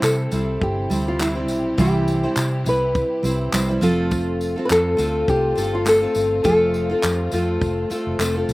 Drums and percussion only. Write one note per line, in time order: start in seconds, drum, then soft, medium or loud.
0.03 clap loud
0.03 tambourine medium
0.32 tambourine soft
0.32 tambourine medium
0.62 kick loud
0.91 tambourine medium
0.91 tambourine soft
1.20 clap loud
1.20 tambourine medium
1.48 tambourine soft
1.48 tambourine medium
1.78 kick loud
1.78 tambourine soft
2.08 tambourine medium
2.08 tambourine soft
2.37 clap loud
2.37 tambourine medium
2.66 tambourine soft
2.66 tambourine medium
2.95 kick loud
2.95 tambourine soft
3.24 tambourine medium
3.24 tambourine soft
3.53 clap loud
3.53 tambourine medium
3.82 tambourine soft
3.82 tambourine medium
4.11 kick loud
4.11 tambourine soft
4.41 tambourine soft
4.41 tambourine medium
4.70 clap loud
4.70 tambourine medium
4.98 tambourine soft
4.98 tambourine medium
5.28 kick loud
5.28 tambourine soft
5.58 tambourine medium
5.58 tambourine soft
5.86 clap loud
5.86 tambourine medium
6.15 tambourine soft
6.16 tambourine medium
6.45 kick loud
6.45 tambourine soft
6.74 tambourine medium
7.03 clap loud
7.03 tambourine medium
7.32 tambourine soft
7.32 tambourine medium
7.61 kick loud
7.61 tambourine soft
7.91 tambourine medium
7.91 tambourine soft
8.20 clap medium
8.20 tambourine medium
8.49 tambourine soft
8.49 tambourine medium